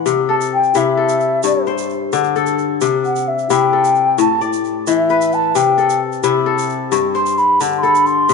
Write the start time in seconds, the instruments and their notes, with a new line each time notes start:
Already playing: kora A2 E3 F#5
0.06 kora C3, shaker
0.29 kora A4, flute A5
0.41 shaker
0.53 flute G5
0.63 shaker
0.75 kora C3 E4, flute E5, shaker
0.97 kora A4
1.09 shaker
1.20 shaker
1.43 kora G2, flute D5, shaker
1.67 kora C5, shaker
1.78 shaker
1.90 shaker
2.12 kora D3, shaker
2.24 shaker
2.36 kora A4, shaker
2.46 shaker
2.58 shaker
2.81 kora C3, shaker
3.04 flute F#5, shaker
3.16 shaker
3.28 flute E5
3.39 shaker
3.50 kora C3 E4, flute G5, shaker
3.73 kora A4
3.84 shaker
3.95 shaker
4.18 kora A2, flute A5, shaker
4.41 kora D5, shaker
4.53 shaker
4.64 shaker
4.87 kora E3, flute E5, shaker
5.09 kora B4, shaker
5.21 shaker
5.32 flute A5, shaker
5.55 kora C3, flute G5, shaker
5.78 kora A4, shaker
5.90 shaker
6.12 shaker
6.24 kora C3 E4, shaker
6.46 kora A4
6.58 shaker
6.70 shaker
6.92 kora G2, shaker
7.15 kora C5, flute C6, shaker
7.26 shaker
7.38 flute B5, shaker
7.60 kora D3, flute A5, shaker
7.77 flute C6
7.82 kora A4, flute B5, shaker
7.95 shaker
8.05 flute C6, shaker
8.29 kora C3, shaker